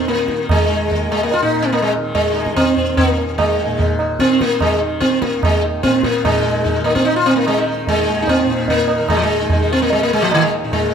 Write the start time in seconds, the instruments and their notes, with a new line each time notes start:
Already playing: tanpura D#2 A#2 D#3
0.08 sitar A#3, tabla te
0.18 tabla te
0.28 tanpura D#3, sitar D#4, tabla ke
0.39 tabla te
0.49 sitar G#3, tabla na, tabla ge
0.71 sitar D#4
0.86 tanpura D#2
0.91 tabla tin, tabla ge
1.11 sitar G#3, tabla na
1.23 sitar A#3
1.32 sitar F4, tabla tin
1.42 tanpura A#2, sitar D#4
1.62 sitar C4
1.72 sitar A#3, tabla na
1.82 sitar G#3
1.97 tanpura D#3
2.15 sitar G#3, tabla tin, tabla ge
2.33 sitar D#4, tabla na
2.46 tabla ke
2.54 tanpura D#3, sitar C4, tabla na, tabla ge
2.77 tabla ge
2.97 sitar A#3, tabla na, tabla ge
3.10 tanpura D#2
3.18 tabla te
3.38 sitar G#3, tabla na, tabla ge
3.59 sitar D#4
3.65 tanpura A#2
3.79 sitar D#4, tabla tin, tabla ge
3.99 sitar D#4, tabla na
4.20 tanpura D#3, sitar C4, tabla ke
4.41 sitar A#3, tabla ke
4.61 sitar G#3, tabla na, tabla ge
4.75 tanpura D#3
4.81 sitar D#4
5.00 sitar C4, tabla ke
5.22 sitar A#3, tabla ke
5.31 tanpura D#2
5.43 sitar G#3, tabla na, tabla ge
5.65 sitar D#4
5.83 tanpura A#2, sitar C4, tabla ke
6.03 sitar A#3, tabla ke
6.24 tanpura A#2, sitar G#3 D#4, tabla na, tabla ge
6.36 sitar D#4
6.45 sitar D#4
6.64 sitar D#4, tabla tin, tabla ge
6.74 sitar D#4
6.79 tanpura D#3
6.84 sitar A#3, tabla na
6.95 sitar C4, tabla ke
7.05 sitar D#4, tabla tin
7.16 sitar F4
7.26 sitar C4, tabla na
7.35 tanpura D#3, sitar A#3
7.46 sitar G#3, tabla na
7.58 sitar D#4
7.66 sitar D#4
7.87 tanpura D#2, sitar G#3, tabla tin, tabla ge
7.98 sitar D#4
8.09 sitar D#4
8.22 sitar D#4
8.28 sitar C4, tabla tin, tabla ge
8.39 sitar D#4
8.44 tanpura A#2
8.50 sitar D#4
8.60 sitar D#4
8.68 sitar A#3, tabla tin, tabla ge
8.79 sitar D#4
8.88 sitar D#4, tabla na
9.00 tanpura D#3, sitar D#4
9.09 sitar G#3, tabla na, tabla ge
9.17 sitar F3
9.23 sitar G#3
9.41 sitar D#4
9.50 sitar D#4, tabla tin, tabla ge
9.54 tanpura D#3
9.63 sitar D#4
9.73 sitar C4
9.82 sitar A#3
9.90 sitar G#3, tabla tin
10.03 sitar A#3
10.09 tanpura D#2, sitar G#3
10.22 sitar F3
10.32 sitar D#3, tabla na
10.43 sitar G#3
10.53 sitar D#4
10.64 tanpura A#2, sitar D#4
10.72 sitar G#3, tabla tin, tabla ge